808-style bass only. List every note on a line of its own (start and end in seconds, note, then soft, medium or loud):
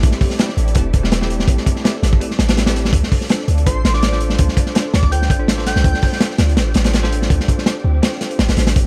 0.03 0.12 A1 loud
0.57 0.77 A1 loud
0.76 0.92 E1 loud
0.94 1.47 E1 loud
1.48 1.57 A1 loud
2.03 2.19 A1 loud
2.39 2.92 A1 medium
2.93 3.02 D2 loud
3.48 3.68 D2 loud
3.67 3.83 A1 loud
3.84 4.38 A1 loud
4.39 4.48 D2 loud
4.94 5.31 D2 loud
5.30 5.74 A1 medium
5.76 5.84 C2 medium
5.84 5.93 D2 loud
6.39 6.59 D2 loud
6.57 6.74 A1 loud
6.75 7.28 A1 loud
7.30 7.39 D2 loud
7.84 8.01 D2 loud
8.39 8.48 A1 medium
8.49 8.56 A1 medium
8.57 8.74 A1 loud
8.76 8.84 A1 loud